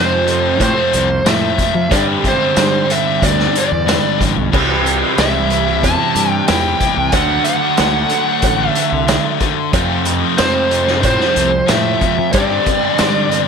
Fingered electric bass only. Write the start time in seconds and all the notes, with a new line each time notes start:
Already playing: F2
0.60 A2
0.94 C2
1.25 A2
1.75 F3
1.91 G2
2.57 G2
3.22 D2
3.72 E2
4.20 A1
4.37 B1
4.53 C2
5.18 C2
5.83 E2
6.16 G2
6.49 E2
6.97 C2
7.13 D2
7.79 D2
8.43 A1
8.92 C2
9.73 F2
10.39 F2
11.04 A2
11.36 C2
11.69 A2
12.19 F3
12.34 G2
13.00 G2